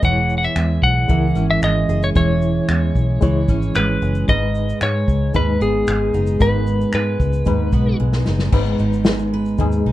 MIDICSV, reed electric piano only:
0, 0, Header, 1, 2, 480
1, 0, Start_track
1, 0, Tempo, 530504
1, 31, Time_signature, 4, 2, 24, 8
1, 8977, End_track
2, 0, Start_track
2, 0, Title_t, "Reed electric piano"
2, 0, Program_c, 0, 4
2, 0, Control_c, 0, 64, 127
2, 19, Note_on_c, 0, 56, 63
2, 29, Note_on_c, 0, 64, 58
2, 38, Note_on_c, 0, 73, 75
2, 40, Control_c, 0, 64, 0
2, 177, Control_c, 0, 64, 127
2, 622, Note_off_c, 0, 56, 0
2, 627, Note_off_c, 0, 64, 0
2, 632, Note_off_c, 0, 73, 0
2, 979, Note_on_c, 0, 56, 77
2, 991, Note_on_c, 0, 64, 63
2, 998, Note_on_c, 0, 70, 80
2, 1583, Note_off_c, 0, 56, 0
2, 1589, Note_off_c, 0, 64, 0
2, 1593, Note_off_c, 0, 70, 0
2, 1946, Note_on_c, 0, 56, 66
2, 1955, Note_on_c, 0, 64, 58
2, 1964, Note_on_c, 0, 73, 78
2, 2548, Note_off_c, 0, 56, 0
2, 2552, Note_off_c, 0, 64, 0
2, 2557, Note_off_c, 0, 73, 0
2, 2903, Note_on_c, 0, 56, 92
2, 2915, Note_on_c, 0, 64, 72
2, 2923, Note_on_c, 0, 73, 96
2, 3507, Note_off_c, 0, 56, 0
2, 3513, Note_off_c, 0, 64, 0
2, 3517, Note_off_c, 0, 73, 0
2, 3867, Note_on_c, 0, 56, 62
2, 3876, Note_on_c, 0, 63, 58
2, 3882, Note_on_c, 0, 71, 75
2, 3889, Control_c, 0, 64, 0
2, 4051, Control_c, 0, 64, 127
2, 4469, Note_off_c, 0, 56, 0
2, 4474, Note_off_c, 0, 63, 0
2, 4477, Note_off_c, 0, 71, 0
2, 4832, Note_on_c, 0, 56, 75
2, 4840, Note_on_c, 0, 63, 69
2, 4847, Note_on_c, 0, 71, 77
2, 5432, Note_off_c, 0, 56, 0
2, 5436, Note_off_c, 0, 63, 0
2, 5439, Note_off_c, 0, 71, 0
2, 5786, Note_on_c, 0, 56, 65
2, 5793, Note_on_c, 0, 63, 69
2, 5803, Note_on_c, 0, 70, 59
2, 5858, Note_off_c, 0, 70, 0
2, 5862, Note_on_c, 0, 71, 76
2, 6389, Note_off_c, 0, 56, 0
2, 6392, Note_off_c, 0, 63, 0
2, 6427, Note_off_c, 0, 71, 0
2, 6749, Note_on_c, 0, 56, 76
2, 6758, Note_on_c, 0, 63, 67
2, 6766, Note_on_c, 0, 71, 82
2, 7350, Note_off_c, 0, 56, 0
2, 7354, Note_off_c, 0, 63, 0
2, 7358, Note_off_c, 0, 71, 0
2, 7706, Note_on_c, 0, 56, 78
2, 7717, Note_on_c, 0, 63, 75
2, 7726, Note_on_c, 0, 71, 85
2, 7731, Control_c, 0, 64, 0
2, 7869, Control_c, 0, 64, 127
2, 8307, Note_off_c, 0, 56, 0
2, 8313, Note_off_c, 0, 63, 0
2, 8317, Note_off_c, 0, 71, 0
2, 8675, Note_on_c, 0, 56, 91
2, 8683, Note_on_c, 0, 63, 76
2, 8695, Note_on_c, 0, 68, 92
2, 8977, Note_off_c, 0, 56, 0
2, 8977, Note_off_c, 0, 63, 0
2, 8977, Note_off_c, 0, 68, 0
2, 8977, End_track
0, 0, End_of_file